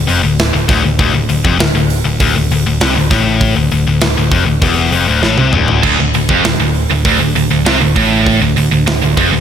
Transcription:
0.07 0.22 F1 medium
0.07 0.22 F2 loud
0.07 open hi-hat medium
0.23 0.52 D1 medium
0.23 0.48 D2 medium
0.39 snare loud
0.39 open hi-hat medium
0.54 0.68 D1 medium
0.54 0.67 D2 medium
0.68 0.83 D1 loud
0.68 0.83 D2 loud
0.68 kick loud
0.68 snare soft
0.68 open hi-hat medium
0.84 0.98 D1 medium
0.84 0.98 D2 medium
0.99 1.13 D1 loud
0.99 1.13 D2 loud
0.99 kick loud
0.99 open hi-hat medium
1.13 1.28 D1 medium
1.13 1.28 D2 medium
1.29 1.43 D1 medium
1.29 1.44 D2 medium
1.29 open hi-hat medium
1.44 1.59 F1 loud
1.44 1.59 F2 loud
1.44 kick loud
1.59 1.74 D1 medium
1.59 1.74 D2 medium
1.59 snare loud
1.59 open hi-hat medium
1.75 2.03 D1 medium
1.75 1.99 D2 medium
1.90 open hi-hat medium
2.05 2.19 D1 medium
2.05 2.19 D2 medium
2.20 2.34 D1 medium
2.20 2.35 D2 loud
2.20 kick loud
2.20 open hi-hat loud
2.36 2.50 D1 medium
2.36 2.50 D2 medium
2.50 2.65 D1 medium
2.50 2.65 D2 medium
2.50 open hi-hat medium
2.66 2.80 D1 medium
2.66 2.81 D2 medium
2.81 2.95 C2 loud
2.81 2.95 C3 loud
2.81 snare loud
2.81 open hi-hat medium
2.96 3.10 D1 medium
2.96 3.10 D2 medium
3.10 3.53 A1 loud
3.10 3.55 A2 loud
3.10 kick loud
3.10 snare soft
3.10 open hi-hat medium
3.40 kick loud
3.40 open hi-hat medium
3.56 3.70 D1 medium
3.56 3.70 D2 medium
3.71 3.86 D1 medium
3.71 3.86 D2 medium
3.71 open hi-hat medium
3.87 4.01 D1 medium
3.87 4.01 D2 medium
4.01 4.16 D1 medium
4.01 4.16 D2 medium
4.01 snare loud
4.01 open hi-hat medium
4.17 4.31 D1 medium
4.17 4.31 D2 medium
4.31 4.46 F1 medium
4.31 4.46 F2 loud
4.31 kick loud
4.31 open hi-hat medium
4.46 4.61 D1 medium
4.46 4.61 D2 medium
4.62 4.90 E1 medium
4.62 4.91 E2 medium
4.62 kick loud
4.62 open hi-hat medium
4.92 5.07 F1 medium
4.92 5.07 F2 medium
4.92 open hi-hat medium
5.08 5.22 D1 medium
5.08 5.22 D2 medium
5.23 5.37 A1 medium
5.23 5.37 A2 loud
5.23 snare medium
5.38 5.52 C2 loud
5.38 5.52 C3 loud
5.38 high tom medium
5.53 5.81 D1 loud
5.53 5.82 D2 loud
5.53 mid tom medium
5.68 floor tom medium
5.83 5.97 D1 loud
5.83 5.98 D2 loud
5.83 kick medium
5.83 splash medium
5.83 crash medium
5.98 6.12 D1 medium
5.98 6.13 D2 medium
6.14 6.28 D1 medium
6.14 6.29 D2 medium
6.14 open hi-hat medium
6.29 6.43 F1 loud
6.29 6.44 F2 medium
6.29 kick loud
6.43 6.58 D1 medium
6.43 6.58 D2 medium
6.43 snare loud
6.43 open hi-hat medium
6.58 6.87 D1 medium
6.58 6.84 D2 medium
6.74 open hi-hat medium
6.89 7.04 D1 medium
6.89 7.04 D2 medium
7.05 7.19 D1 loud
7.05 7.19 D2 loud
7.05 kick loud
7.05 open hi-hat loud
7.20 7.34 D1 medium
7.20 7.34 D2 medium
7.35 7.49 D1 medium
7.35 7.50 D2 medium
7.35 open hi-hat medium
7.51 7.65 D1 medium
7.51 7.66 D2 medium
7.66 7.80 C2 medium
7.66 7.80 C3 loud
7.66 snare loud
7.81 7.95 D1 medium
7.81 7.96 D2 medium
7.96 8.38 A1 loud
7.96 8.41 A2 loud
7.96 kick loud
7.96 open hi-hat medium
8.26 kick loud
8.26 open hi-hat medium
8.42 8.55 D1 medium
8.42 8.56 D2 medium
8.57 8.71 D1 medium
8.57 8.70 D2 medium
8.57 open hi-hat medium
8.72 8.86 D1 medium
8.72 8.85 D2 medium
8.87 9.01 D1 medium
8.87 9.02 D2 medium
8.87 snare loud
8.87 open hi-hat medium
9.03 9.17 D1 medium
9.03 9.17 D2 medium
9.17 9.31 F1 loud
9.17 9.31 F2 loud
9.17 kick loud
9.17 open hi-hat medium
9.33 9.40 D1 medium
9.33 9.40 D2 medium

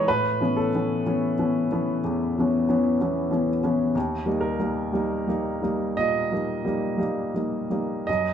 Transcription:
0.08 0.40 A2 medium
0.08 0.56 B4 medium
0.41 0.69 E3 soft
0.41 0.70 B3 soft
0.41 0.70 C#4 soft
0.57 3.47 A4 medium
0.75 1.03 E3 soft
0.75 1.03 B3 soft
0.75 1.03 C#4 soft
1.06 1.34 E3 soft
1.06 1.35 B3 soft
1.06 1.35 C#4 soft
1.39 1.67 E3 soft
1.39 1.67 B3 soft
1.39 1.67 C#4 soft
1.72 2.00 E3 soft
1.72 2.00 B3 soft
1.72 2.00 C#4 soft
2.04 2.34 E2 medium
2.38 2.65 E3 soft
2.38 2.66 B3 soft
2.38 2.66 C#4 soft
2.69 2.97 E3 soft
2.69 2.97 B3 soft
2.69 2.97 C#4 soft
3.01 3.29 E3 soft
3.01 3.29 B3 soft
3.01 3.29 C#4 soft
3.31 3.60 E3 soft
3.31 3.60 B3 soft
3.31 3.61 C#4 soft
3.63 3.92 E3 soft
3.63 3.93 B3 soft
3.63 3.92 C#4 soft
3.95 4.26 D#2 medium
4.26 4.56 G3 soft
4.26 4.56 A#3 soft
4.26 4.56 D#4 soft
4.41 5.98 A#4 medium
4.60 4.90 G3 soft
4.60 4.90 A#3 soft
4.60 4.90 D#4 soft
4.93 5.24 G3 soft
4.93 5.25 A#3 soft
4.93 5.25 D#4 soft
5.28 5.60 G3 soft
5.28 5.61 A#3 soft
5.28 5.61 D#4 soft
5.62 5.95 G3 soft
5.62 5.95 A#3 soft
5.62 5.95 D#4 soft
5.97 6.32 A#2 soft
5.97 8.05 D#5 medium
6.32 6.63 G3 soft
6.32 6.63 A#3 soft
6.32 6.64 D#4 soft
6.64 6.96 G3 soft
6.64 6.97 A#3 soft
6.64 6.97 D#4 soft
6.98 7.31 G3 soft
6.98 7.31 A#3 soft
6.98 7.31 D#4 soft
7.34 7.67 G3 soft
7.34 7.68 A#3 soft
7.34 7.67 D#4 soft
7.70 8.03 G3 soft
7.70 8.03 A#3 soft
7.70 8.04 D#4 soft
8.07 8.34 F#2 soft
8.07 8.34 D#5 medium

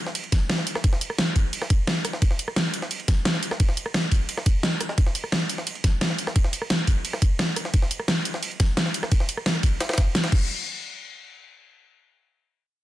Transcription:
0.06 snare soft
0.15 closed hi-hat medium
0.15 ride medium
0.24 ride soft
0.32 kick loud
0.32 snare soft
0.32 closed hi-hat loud
0.32 open hi-hat medium
0.50 snare loud
0.50 closed hi-hat medium
0.50 ride medium
0.58 snare medium
0.67 closed hi-hat loud
0.67 ride medium
0.75 cross-stick medium
0.75 snare medium
0.84 kick loud
0.84 closed hi-hat medium
0.84 ride medium
0.93 snare medium
1.01 closed hi-hat loud
1.01 ride medium
1.10 cross-stick soft
1.18 snare loud
1.18 closed hi-hat medium
1.18 ride medium
1.27 ride soft
1.36 kick medium
1.36 open hi-hat medium
1.36 ride medium
1.53 closed hi-hat medium
1.53 ride medium
1.62 cross-stick soft
1.62 snare soft
1.70 kick loud
1.70 closed hi-hat medium
1.70 ride medium
1.87 snare loud
1.87 closed hi-hat medium
1.87 ride medium
2.05 cross-stick soft
2.05 closed hi-hat loud
2.05 ride medium
2.13 snare soft
2.22 kick loud
2.22 closed hi-hat medium
2.22 ride medium
2.31 snare soft
2.39 closed hi-hat medium
2.39 ride medium
2.48 cross-stick soft
2.56 snare loud
2.56 closed hi-hat medium
2.56 ride medium
2.74 closed hi-hat medium
2.74 ride medium
2.82 snare soft
2.91 closed hi-hat medium
2.91 ride medium
3.00 ride soft
3.08 kick loud
3.08 snare soft
3.08 closed hi-hat medium
3.08 open hi-hat medium
3.25 snare loud
3.25 closed hi-hat medium
3.25 ride medium
3.34 snare medium
3.43 closed hi-hat medium
3.43 ride medium
3.51 cross-stick soft
3.51 snare medium
3.60 kick loud
3.60 closed hi-hat medium
3.60 ride medium
3.69 snare soft
3.77 closed hi-hat medium
3.77 ride medium
3.86 cross-stick soft
3.94 snare loud
3.94 closed hi-hat medium
3.94 ride medium
4.03 ride soft
4.12 kick medium
4.12 open hi-hat medium
4.12 ride medium
4.29 closed hi-hat medium
4.29 ride medium
4.37 cross-stick soft
4.37 snare soft
4.46 kick loud
4.46 closed hi-hat medium
4.46 ride medium
4.63 snare loud
4.63 closed hi-hat medium
4.63 ride medium
4.81 cross-stick soft
4.81 closed hi-hat medium
4.81 ride medium
4.89 snare medium
4.98 kick loud
4.98 closed hi-hat medium
4.98 ride medium
5.06 snare soft
5.15 closed hi-hat medium
5.15 ride medium
5.24 cross-stick soft
5.32 snare loud
5.32 closed hi-hat medium
5.32 ride medium
5.50 closed hi-hat medium
5.50 ride medium
5.58 snare soft
5.67 closed hi-hat medium
5.67 ride medium
5.75 ride soft
5.84 kick loud
5.84 snare soft
5.84 closed hi-hat medium
5.84 open hi-hat medium
6.01 snare loud
6.01 closed hi-hat medium
6.01 ride medium
6.10 snare medium
6.18 closed hi-hat medium
6.18 ride medium
6.27 cross-stick soft
6.27 snare medium
6.36 kick loud
6.36 closed hi-hat medium
6.36 ride medium
6.44 snare medium
6.53 closed hi-hat medium
6.53 ride medium
6.62 cross-stick soft
6.70 snare loud
6.70 closed hi-hat medium
6.70 ride medium
6.79 ride soft
6.87 kick medium
6.87 open hi-hat medium
6.87 ride medium
7.05 closed hi-hat medium
7.05 ride medium
7.13 cross-stick soft
7.13 snare soft
7.22 kick loud
7.22 closed hi-hat medium
7.22 ride medium
7.39 snare loud
7.39 closed hi-hat medium
7.39 ride medium
7.56 cross-stick soft
7.56 closed hi-hat medium
7.56 ride medium
7.65 snare medium
7.74 kick loud
7.74 closed hi-hat medium
7.74 ride medium
7.82 snare soft
7.91 closed hi-hat loud
7.91 ride medium
7.99 cross-stick soft
8.08 snare loud
8.08 closed hi-hat medium
8.08 ride medium
8.25 closed hi-hat medium
8.25 ride medium
8.34 snare soft
8.43 closed hi-hat medium
8.43 ride medium
8.51 ride soft
8.60 kick loud
8.60 snare soft
8.60 closed hi-hat loud
8.60 open hi-hat medium
8.77 snare loud
8.77 closed hi-hat medium
8.77 ride medium
8.86 snare medium
8.94 closed hi-hat loud
8.94 ride medium
9.03 cross-stick soft
9.03 snare medium
9.12 kick loud
9.12 closed hi-hat medium
9.12 ride medium
9.20 snare medium
9.29 closed hi-hat loud
9.29 ride medium
9.37 cross-stick soft
9.46 snare loud
9.46 closed hi-hat medium
9.46 ride medium
9.55 cross-stick soft
9.55 ride soft
9.63 kick medium
9.63 open hi-hat medium
9.63 ride medium
9.80 snare loud
9.80 closed hi-hat medium
9.80 ride medium
9.89 cross-stick soft
9.89 snare medium
9.89 ride medium
9.93 snare medium
9.93 ride medium
9.98 kick loud
9.98 snare loud
9.98 closed hi-hat loud
9.98 ride medium
10.15 snare loud
10.15 closed hi-hat medium
10.15 ride medium
10.24 snare loud
10.24 ride medium
10.32 kick loud
10.32 crash medium

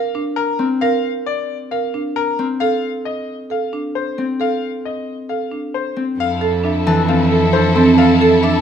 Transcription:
0.00 0.22 A#4 medium
0.00 0.21 F5 medium
0.15 0.44 D4 medium
0.36 0.66 A#4 medium
0.59 2.38 C4 medium
0.81 1.11 A#4 medium
0.81 1.11 F5 medium
1.26 1.56 D5 medium
1.71 2.01 A#4 medium
1.71 2.01 F5 medium
1.94 2.23 D4 medium
2.16 2.45 A#4 medium
2.39 4.17 C4 medium
2.60 2.90 A4 medium
2.60 2.90 F5 medium
3.05 3.35 D#5 medium
3.50 3.80 A4 medium
3.50 3.80 F5 medium
3.73 4.02 D4 soft
3.95 4.25 C5 medium
4.18 5.95 C4 medium
4.40 4.69 A4 medium
4.40 4.69 F5 medium
4.85 5.14 D#5 soft
5.29 5.59 A4 soft
5.29 5.59 F5 soft
5.52 5.81 D4 soft
5.74 6.04 C5 medium
5.96 7.07 C4 soft
6.19 8.61 F2 medium
6.19 8.61 E4 medium
6.19 6.35 A4 soft
6.19 8.61 A4 medium
6.19 6.49 F5 medium
6.41 6.57 A4 soft
6.41 6.71 A4 medium
6.63 6.93 D4 medium
6.63 6.80 A4 medium
6.63 6.93 E5 medium
6.86 8.61 E3 medium
6.86 7.02 A4 medium
6.86 7.16 A5 medium
7.08 7.74 C4 medium
7.08 7.24 A4 medium
7.08 7.38 F5 medium
7.31 7.60 A4 medium
7.31 7.47 A4 medium
7.53 7.83 D4 medium
7.53 7.70 A4 medium
7.53 7.83 C5 medium
7.75 8.61 C4 medium
7.75 8.05 C4 medium
7.75 8.05 A4 medium
7.75 7.92 A4 medium
7.98 8.14 A4 medium
7.98 8.27 F5 medium
8.21 8.50 A4 medium
8.21 8.37 A4 medium
8.43 8.61 D4 medium
8.43 8.59 A4 medium
8.43 8.61 E5 medium

